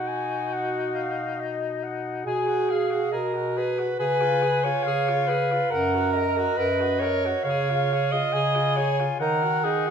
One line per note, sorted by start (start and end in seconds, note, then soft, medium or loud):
0.00 2.21 B2 medium
0.00 2.22 D#4 medium
0.00 1.82 F#4 medium
0.08 0.55 G#5 medium
0.53 0.94 F#5 medium
0.95 1.42 F5 medium
1.40 1.85 D#5 medium
1.83 2.26 F#5 medium
2.25 3.03 B2 medium
2.25 2.49 G#4 medium
2.25 3.15 G#4 loud
2.25 2.72 G#5 medium
2.47 2.71 F#4 medium
2.69 2.92 G#4 medium
2.69 3.13 F5 medium
2.91 3.11 F#4 medium
3.12 3.89 B2 medium
3.12 3.36 G#4 medium
3.12 3.59 A#4 loud
3.12 3.71 D#5 medium
3.34 3.59 F#4 medium
3.57 3.80 G#4 medium
3.57 3.99 B4 loud
3.79 3.99 F#4 medium
3.99 4.75 C#3 medium
3.99 4.23 G#4 medium
3.99 4.65 B4 loud
3.99 4.85 G#5 loud
4.21 4.44 F4 medium
4.43 4.67 G#4 medium
4.64 4.86 F4 medium
4.64 5.29 C#5 loud
4.84 5.61 C#3 medium
4.84 5.11 G#4 medium
4.84 5.71 F5 medium
5.09 5.30 F4 medium
5.28 5.54 G#4 medium
5.28 5.72 B4 loud
5.52 5.72 F4 medium
5.70 6.47 F#2 medium
5.70 6.59 A#4 loud
5.70 5.96 A#4 medium
5.70 6.13 F#5 medium
5.95 6.18 F#4 medium
6.13 6.39 A#4 medium
6.13 7.45 D#5 medium
6.38 6.58 F#4 medium
6.56 7.34 F#2 medium
6.56 6.82 A#4 medium
6.56 7.01 B4 loud
6.80 7.03 F#4 medium
6.99 7.27 A#4 medium
6.99 7.44 C#5 loud
7.25 7.46 F#4 medium
7.44 8.23 C#3 loud
7.44 8.13 C#5 loud
7.44 8.34 F5 medium
7.48 7.72 G#4 medium
7.71 7.94 F4 medium
7.93 8.15 G#4 medium
8.12 8.34 F4 medium
8.12 8.78 D#5 loud
8.33 9.10 C#3 loud
8.33 8.57 G#4 medium
8.33 9.19 G#5 medium
8.56 8.80 F4 medium
8.76 9.02 G#4 medium
8.76 9.08 C#5 loud
9.00 9.20 F4 medium
9.20 9.90 D#3 loud
9.20 9.44 D#4 medium
9.20 9.65 A#4 loud
9.20 9.90 F#5 medium
9.43 9.66 F#4 medium
9.64 9.88 D#4 medium
9.64 9.90 G#4 loud
9.87 9.90 F#4 medium